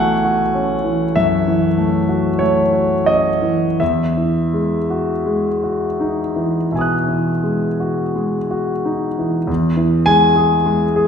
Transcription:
0.00 1.12 B1 soft
0.00 0.84 E3 soft
0.00 1.78 A3 soft
0.00 0.13 F#4 soft
0.00 3.83 F#5 medium
0.00 3.83 G#5 medium
0.25 0.73 F#4 soft
0.55 1.03 C#4 soft
0.84 1.34 E3 soft
1.16 1.66 F#2 soft
1.16 2.41 E5 medium
1.47 1.97 E3 soft
1.78 2.28 A3 soft
2.09 2.61 F#4 soft
2.39 2.94 A3 soft
2.39 3.08 C#5 medium
2.73 3.29 F#4 soft
3.06 3.65 C#4 soft
3.06 3.79 D#5 medium
3.42 3.79 E3 soft
3.80 6.66 E2 soft
3.80 6.71 E5 medium
4.17 4.76 E3 soft
4.54 5.12 G#3 soft
4.90 5.48 F#4 soft
5.26 5.84 G#3 soft
5.64 6.20 F#4 soft
6.00 6.57 D#4 soft
6.36 6.93 E3 soft
6.72 7.29 B2 soft
6.72 9.46 E5 soft
6.72 9.48 G#5 soft
6.79 9.49 D#6 soft
6.79 9.50 F#6 soft
7.08 7.65 E3 soft
7.44 8.00 G#3 soft
7.80 8.36 F#4 soft
8.16 8.71 G#3 soft
8.51 9.06 F#4 soft
8.85 9.37 D#4 soft
9.18 9.49 E3 soft
9.47 11.08 E2 medium
9.77 10.25 E3 soft
10.06 10.55 G#3 soft
10.06 11.08 G#5 medium
10.36 10.85 G#4 soft
10.66 11.08 G#3 soft
10.96 11.08 G#4 soft

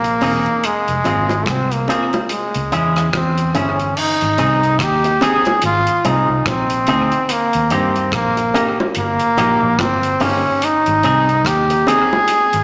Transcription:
0.00 0.19 A#1 medium
0.00 0.67 A#3 loud
0.04 closed hi-hat medium
0.21 0.45 E1 medium
0.21 0.44 C4 medium
0.21 0.45 D#4 medium
0.21 0.45 G#4 medium
0.21 open hi-hat soft
0.21 low bongo medium
0.46 closed hi-hat soft
0.64 1.51 G#3 loud
0.64 closed hi-hat loud
0.88 1.04 F1 medium
0.88 closed hi-hat soft
1.04 1.45 G#1 medium
1.04 1.28 C4 medium
1.04 1.28 F4 medium
1.04 1.28 G#4 medium
1.04 closed hi-hat medium
1.04 high bongo medium
1.29 closed hi-hat soft
1.29 high bongo medium
1.46 1.86 C2 medium
1.46 1.75 C4 medium
1.46 kick loud
1.46 cross-stick loud
1.46 closed hi-hat medium
1.72 2.07 A#3 medium
1.72 closed hi-hat soft
1.88 2.11 C4 medium
1.88 2.11 F4 medium
1.88 2.12 G#4 medium
1.88 closed hi-hat medium
1.88 low bongo medium
2.13 closed hi-hat soft
2.13 high bongo medium
2.29 3.10 G#3 medium
2.29 closed hi-hat medium
2.54 2.71 C#2 medium
2.54 closed hi-hat medium
2.72 3.11 E2 medium
2.72 2.94 C#4 medium
2.72 2.95 E4 medium
2.72 2.95 G#4 loud
2.72 closed hi-hat medium
2.96 3.09 C#4 soft
2.96 3.09 E4 medium
2.96 3.08 G#4 medium
2.96 cross-stick medium
2.96 closed hi-hat soft
3.13 3.53 E2 medium
3.13 3.53 C4 medium
3.13 kick loud
3.13 cross-stick loud
3.13 closed hi-hat medium
3.13 high bongo medium
3.38 closed hi-hat medium
3.54 3.94 G1 medium
3.54 3.77 C#4 medium
3.54 4.01 C#4 medium
3.54 3.78 E4 medium
3.54 3.78 G#4 medium
3.54 closed hi-hat medium
3.54 low bongo medium
3.79 closed hi-hat soft
3.97 4.84 D#4 loud
3.97 crash loud
4.21 4.38 G#1 medium
4.21 closed hi-hat medium
4.38 4.78 C2 loud
4.38 4.61 C4 medium
4.38 4.61 D#4 loud
4.38 4.61 G#4 medium
4.38 closed hi-hat medium
4.63 closed hi-hat soft
4.79 5.19 D#2 medium
4.79 5.25 G4 loud
4.79 kick loud
4.79 cross-stick loud
4.79 closed hi-hat loud
5.04 muted clean electric guitar stroke medium
5.04 closed hi-hat medium
5.21 5.44 C4 medium
5.21 5.44 D#4 medium
5.21 5.45 G#4 loud
5.21 5.64 G#4 medium
5.21 closed hi-hat medium
5.21 low bongo medium
5.45 closed hi-hat soft
5.45 high bongo medium
5.62 5.86 G#1 loud
5.62 closed hi-hat medium
5.66 6.09 F4 loud
5.87 closed hi-hat medium
6.05 6.28 C2 medium
6.05 6.27 C4 medium
6.05 6.28 D#4 medium
6.05 6.50 D#4 medium
6.05 6.28 G#4 medium
6.05 closed hi-hat medium
6.05 high bongo medium
6.30 6.45 C2 medium
6.46 6.85 A#1 medium
6.46 7.33 C4 loud
6.46 kick loud
6.46 cross-stick loud
6.46 closed hi-hat medium
6.46 high bongo medium
6.70 closed hi-hat medium
6.87 7.11 D2 medium
6.87 7.10 C4 medium
6.87 7.11 D#4 medium
6.87 7.11 G#4 loud
6.87 closed hi-hat medium
6.87 low bongo medium
7.12 closed hi-hat soft
7.29 7.72 A#3 loud
7.29 closed hi-hat loud
7.53 7.70 D#2 medium
7.53 closed hi-hat medium
7.70 8.11 G2 medium
7.70 7.94 A#3 loud
7.70 8.11 C4 medium
7.70 7.94 D#4 loud
7.70 7.94 G4 loud
7.70 closed hi-hat medium
7.96 closed hi-hat soft
8.12 8.52 A#1 medium
8.12 8.69 A#3 loud
8.12 kick loud
8.12 cross-stick loud
8.12 closed hi-hat loud
8.37 muted clean electric guitar stroke medium
8.37 closed hi-hat medium
8.54 8.77 A#3 medium
8.54 8.77 D#4 medium
8.54 8.77 G4 loud
8.54 closed hi-hat medium
8.54 low bongo medium
8.80 high bongo medium
8.95 9.19 G1 medium
8.95 9.83 A#3 loud
8.95 closed hi-hat medium
9.19 closed hi-hat medium
9.37 9.61 A#1 medium
9.37 9.60 A#3 medium
9.37 9.60 D#4 loud
9.37 9.61 G4 loud
9.37 closed hi-hat medium
9.37 high bongo medium
9.62 9.78 A#1 medium
9.62 muted clean electric guitar stroke soft
9.79 10.18 G1 loud
9.79 10.24 C4 loud
9.79 kick loud
9.79 cross-stick loud
9.79 closed hi-hat medium
9.79 high bongo medium
10.03 closed hi-hat medium
10.20 10.44 G1 loud
10.20 10.43 A#3 medium
10.20 10.66 C#4 medium
10.20 10.43 D#4 medium
10.20 10.44 G4 medium
10.20 open hi-hat medium
10.20 low bongo medium
10.62 11.48 D#4 loud
10.62 closed hi-hat loud
10.86 11.03 G#1 loud
10.86 closed hi-hat medium
11.03 11.43 C2 medium
11.03 11.27 C4 medium
11.03 11.27 D#4 medium
11.03 11.27 G#4 loud
11.03 closed hi-hat medium
11.29 closed hi-hat soft
11.45 11.84 D#2 medium
11.45 11.90 G4 loud
11.45 kick loud
11.45 cross-stick loud
11.45 closed hi-hat medium
11.70 muted clean electric guitar stroke medium
11.70 closed hi-hat medium
11.87 12.10 C4 medium
11.87 12.10 D#4 medium
11.87 12.10 G#4 loud
11.87 12.64 G#4 loud
11.87 closed hi-hat medium
11.87 low bongo medium
12.13 high bongo medium
12.28 closed hi-hat medium
12.53 12.64 G#1 medium
12.53 closed hi-hat medium

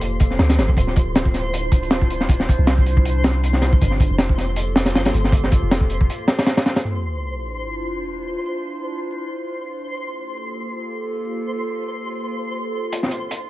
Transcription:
0.00 0.39 F1 loud
0.00 0.74 A#3 medium
0.00 0.73 F4 medium
0.00 0.74 G4 medium
0.00 0.74 A4 medium
0.00 6.84 C5 medium
0.00 6.84 C6 medium
0.00 closed hi-hat medium
0.20 kick medium
0.20 closed hi-hat medium
0.31 snare soft
0.39 0.60 D2 medium
0.39 snare loud
0.39 closed hi-hat medium
0.49 snare loud
0.49 closed hi-hat medium
0.58 0.76 G1 medium
0.58 snare loud
0.58 closed hi-hat medium
0.69 kick medium
0.77 2.57 D1 loud
0.77 3.78 D4 medium
0.77 3.78 E4 medium
0.77 3.78 F4 medium
0.77 3.78 C5 medium
0.77 kick loud
0.77 closed hi-hat medium
0.87 snare soft
0.96 kick loud
0.96 closed hi-hat medium
1.16 snare loud
1.16 closed hi-hat medium
1.25 kick loud
1.34 snare medium
1.34 closed hi-hat medium
1.54 closed hi-hat medium
1.72 kick loud
1.72 closed hi-hat medium
1.83 closed hi-hat soft
1.91 snare loud
1.91 closed hi-hat medium
2.01 kick loud
2.10 closed hi-hat medium
2.21 snare medium
2.29 kick loud
2.29 closed hi-hat medium
2.40 snare medium
2.49 kick medium
2.49 closed hi-hat medium
2.59 3.80 C2 loud
2.67 snare loud
2.67 closed hi-hat medium
2.78 kick medium
2.86 closed hi-hat medium
2.97 kick loud
3.05 closed hi-hat medium
3.24 snare loud
3.24 closed hi-hat medium
3.44 closed hi-hat medium
3.53 snare medium
3.62 snare medium
3.62 closed hi-hat medium
3.73 kick loud
3.81 4.09 G1 loud
3.81 6.82 A#3 medium
3.81 6.82 F4 medium
3.81 6.82 G4 medium
3.81 6.82 A4 medium
3.81 kick loud
3.81 closed hi-hat medium
3.91 snare soft
4.00 kick loud
4.00 closed hi-hat medium
4.10 4.96 F1 loud
4.18 snare loud
4.18 closed hi-hat medium
4.29 kick medium
4.38 snare soft
4.38 closed hi-hat medium
4.56 closed hi-hat medium
4.76 snare loud
4.76 closed hi-hat medium
4.86 snare medium
4.86 closed hi-hat medium
4.95 5.12 G1 loud
4.95 snare medium
4.95 closed hi-hat medium
5.05 snare loud
5.05 closed hi-hat medium
5.14 5.61 G1 medium
5.14 closed hi-hat medium
5.24 snare medium
5.32 kick loud
5.32 closed hi-hat medium
5.44 snare medium
5.52 kick loud
5.52 closed hi-hat medium
5.62 6.09 F1 loud
5.71 snare loud
5.71 closed hi-hat medium
5.81 kick loud
5.90 closed hi-hat medium
6.01 kick medium
6.10 closed hi-hat medium
6.28 snare loud
6.28 closed hi-hat medium
6.39 snare loud
6.39 closed hi-hat medium
6.46 snare loud
6.46 closed hi-hat medium
6.57 snare loud
6.57 closed hi-hat medium
6.66 snare loud
6.66 closed hi-hat medium
6.76 snare loud
6.76 closed hi-hat medium
6.85 9.86 D4 medium
6.85 9.86 E4 medium
6.85 9.86 F4 medium
6.85 9.86 C5 medium
6.85 13.50 C5 medium
6.85 13.50 C6 medium
6.85 sub drop medium
9.88 12.89 A#3 medium
9.88 13.50 F4 medium
9.88 12.89 G4 medium
9.88 12.89 A4 medium
12.92 13.50 D4 medium
12.92 13.50 E4 medium
12.92 13.50 C5 medium
12.92 closed hi-hat medium
13.03 snare soft
13.11 closed hi-hat medium
13.31 closed hi-hat medium

